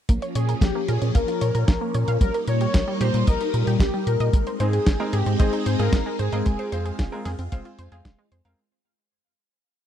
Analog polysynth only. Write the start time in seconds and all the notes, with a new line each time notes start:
0.35 G#4
0.62 G4
0.89 G#4
1.15 A#4
2.21 A#4
2.48 C#5
3.01 C5
3.27 A#4
3.81 G4
4.07 A#4
4.60 G#4
5.13 G4
5.40 G#4
5.80 A#4
6.19 G#4